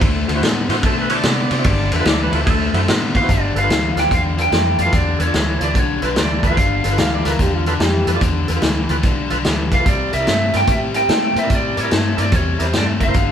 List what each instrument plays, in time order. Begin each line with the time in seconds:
0.01 fingered electric bass D2, overdriven electric guitar D3 A3, kick, ride
0.28 fingered electric bass D2, overdriven electric guitar D3 A3, tonewheel organ F#4 A4, ride
0.35 tonewheel organ E4 F#4 C5
0.42 fingered electric bass A2, overdriven electric guitar D3 B3, snare, ride
0.69 fingered electric bass A2, overdriven electric guitar D3 B3, tonewheel organ E4 F#4 C5, snare, ride
0.83 fingered electric bass B2, overdriven electric guitar D3 A3, tonewheel organ A4, kick, ride
1.01 tonewheel organ B4
1.10 overdriven electric guitar D3 A3, tonewheel organ E4 F#4 C5 C#5, ride
1.15 tonewheel organ D5
1.23 fingered electric bass C3, overdriven electric guitar D3 B3, snare, ride
1.50 fingered electric bass C3, overdriven electric guitar D3 B3, tonewheel organ F#4 C5, ride
1.58 tonewheel organ E4 F#4 C5
1.64 fingered electric bass G1, overdriven electric guitar G2 D3, kick, ride
1.92 fingered electric bass E2, overdriven electric guitar G2 D3, tonewheel organ A4 B4 E5, ride
1.99 tonewheel organ F4 A4 B4
2.05 fingered electric bass D2, overdriven electric guitar G2 E3, tonewheel organ D5, snare, ride
2.23 tonewheel organ B4
2.32 fingered electric bass D2, overdriven electric guitar G2 E3, tonewheel organ F4 A4 B4, ride
2.46 fingered electric bass D2, overdriven electric guitar D3 A3, tonewheel organ G#4, kick, ride
2.50 tonewheel organ A4
2.73 fingered electric bass F#2, overdriven electric guitar D3 A3, tonewheel organ E4 F#4 C5, ride
2.88 fingered electric bass A2, overdriven electric guitar D3 B3, snare, ride
3.14 fingered electric bass A1, overdriven electric guitar D3 B3, tonewheel organ F#4 C5, lead electric guitar F5, kick, ride
3.22 tonewheel organ E4 F#4 C5
3.29 fingered electric bass G1, overdriven electric guitar G2 D3, lead electric guitar D5, kick, closed hi-hat
3.54 fingered electric bass G1, overdriven electric guitar G2 D3, tonewheel organ A4 B4, lead electric guitar F5, closed hi-hat
3.62 tonewheel organ F4 A4 B4
3.69 fingered electric bass D2, overdriven electric guitar G2 E3, snare, closed hi-hat
3.96 fingered electric bass D2, overdriven electric guitar G2 E3, tonewheel organ F4 A4 B4, lead electric guitar G5, snare, closed hi-hat
4.11 fingered electric bass E2, overdriven electric guitar G2 D3, lead electric guitar F5, kick, closed hi-hat
4.37 overdriven electric guitar G2 D3, tonewheel organ F4 A4 B4, closed hi-hat
4.42 lead electric guitar G5
4.52 fingered electric bass F2, overdriven electric guitar G2 E3, snare, closed hi-hat
4.79 fingered electric bass F2, overdriven electric guitar G2 E3, tonewheel organ A4 D5, lead electric guitar F5, closed hi-hat
4.85 tonewheel organ F4 A4 B4
4.92 fingered electric bass E2, overdriven electric guitar G2 D3, lead electric guitar D5, kick, closed hi-hat
5.18 fingered electric bass E2, overdriven electric guitar G2 D3, tonewheel organ A4 B4, lead electric guitar C#5, closed hi-hat
5.26 tonewheel organ F4 A4 D5
5.34 fingered electric bass D2, overdriven electric guitar G2 E3, snare, closed hi-hat
5.60 fingered electric bass D2, overdriven electric guitar G2 E3, tonewheel organ F4 A4 D5, lead electric guitar D5, closed hi-hat
5.75 fingered electric bass B1, overdriven electric guitar G2 D3, kick, closed hi-hat
5.79 lead electric guitar C#5
6.02 fingered electric bass B1, overdriven electric guitar G2 D3, tonewheel organ F4 A4 B4, lead electric guitar B4, closed hi-hat
6.16 fingered electric bass D2, overdriven electric guitar G2 E3, snare, closed hi-hat
6.21 lead electric guitar D5
6.43 fingered electric bass D2, overdriven electric guitar G2 E3, tonewheel organ A4 B4, kick, closed hi-hat
6.47 tonewheel organ F4 A4 B4, lead electric guitar F5
6.57 fingered electric bass G1, overdriven electric guitar G2 D3, kick, closed hi-hat
6.84 fingered electric bass G1, overdriven electric guitar G2 D3, tonewheel organ A4 B4, closed hi-hat
6.91 tonewheel organ F4 A4 B4
6.98 fingered electric bass D2, overdriven electric guitar G2 E3, electric slide guitar F5, snare, closed hi-hat
7.15 electric slide guitar D5
7.25 fingered electric bass D2, overdriven electric guitar G2 E3, tonewheel organ F4 A4 B4, electric slide guitar A#4, snare, closed hi-hat
7.39 fingered electric bass E2, overdriven electric guitar G2 D3, electric slide guitar G4, kick, closed hi-hat
7.55 electric slide guitar F4
7.66 overdriven electric guitar G2 D3, electric slide guitar D4, tonewheel organ F4 A4 B4, closed hi-hat
7.80 fingered electric bass F2, overdriven electric guitar G2 E3, electric slide guitar G4, snare, closed hi-hat
8.07 fingered electric bass F2, overdriven electric guitar G2 E3, tonewheel organ A4 B4, closed hi-hat
8.14 tonewheel organ F4 A4 D5
8.21 fingered electric bass E2, overdriven electric guitar G2 D3, kick, closed hi-hat
8.48 fingered electric bass E2, overdriven electric guitar G2 D3, tonewheel organ A4 B4, closed hi-hat
8.55 tonewheel organ F4 A4 B4
8.62 fingered electric bass D2, overdriven electric guitar G2 E3, snare, closed hi-hat
8.89 fingered electric bass D2, overdriven electric guitar G2 E3, tonewheel organ F4 A4 B4, closed hi-hat
9.03 fingered electric bass B1, overdriven electric guitar G2 D3, kick, closed hi-hat
9.30 fingered electric bass B1, overdriven electric guitar G2 D3, tonewheel organ F4 A4 B4, closed hi-hat
9.44 fingered electric bass D2, overdriven electric guitar G2 E3, snare, closed hi-hat
9.71 fingered electric bass B1, overdriven electric guitar G2 E3, tonewheel organ A4 B4, lead electric guitar F5, kick, closed hi-hat
9.78 tonewheel organ F4 A4 B4
9.86 fingered electric bass C2, overdriven electric guitar C3 G3, lead electric guitar D5, kick, closed hi-hat
10.12 fingered electric bass C2, overdriven electric guitar C3 G3, tonewheel organ A#4 D5, lead electric guitar E5, closed hi-hat
10.20 tonewheel organ E4 A#4 D5
10.27 fingered electric bass G2, overdriven electric guitar C3 A3, lead electric guitar E5, snare, closed hi-hat
10.53 fingered electric bass G2, overdriven electric guitar C3 A3, tonewheel organ E4 A#4 D5, lead electric guitar G5, snare, closed hi-hat
10.67 fingered electric bass A2, overdriven electric guitar C3 G3, kick, closed hi-hat
10.72 lead electric guitar E5
10.94 overdriven electric guitar C3 G3, tonewheel organ E4 A#4 C5, lead electric guitar G5, closed hi-hat
11.09 fingered electric bass A#2, overdriven electric guitar C3 A3, snare, closed hi-hat
11.36 fingered electric bass A#2, overdriven electric guitar C3 A3, tonewheel organ A#4 C5, lead electric guitar E5, closed hi-hat
11.42 tonewheel organ E4 A#4 D5
11.50 fingered electric bass A2, overdriven electric guitar C3 G3, kick, closed hi-hat
11.55 lead electric guitar D5
11.76 fingered electric bass A2, overdriven electric guitar C3 G3, tonewheel organ A#4 D5, closed hi-hat
11.81 tonewheel organ E4 A#4 D5, lead electric guitar C#5
11.91 fingered electric bass G2, overdriven electric guitar C3 A3, snare, closed hi-hat
12.17 fingered electric bass G2, overdriven electric guitar C3 A3, tonewheel organ E4 A#4 D5, closed hi-hat
12.22 lead electric guitar D5
12.32 fingered electric bass E2, overdriven electric guitar C3 G3, lead electric guitar C#5, kick, closed hi-hat
12.59 fingered electric bass E2, overdriven electric guitar C3 G3, tonewheel organ E4 A#4 D5, lead electric guitar C5, closed hi-hat
12.73 fingered electric bass G2, overdriven electric guitar C3 A3, snare, closed hi-hat
12.78 lead electric guitar D5
13.00 fingered electric bass F#1, overdriven electric guitar C3 A3, tonewheel organ A#4 E5, lead electric guitar F5, kick, closed hi-hat
13.07 tonewheel organ E4 A#4 C5
13.14 fingered electric bass G1, overdriven electric guitar G2 D3, kick, closed hi-hat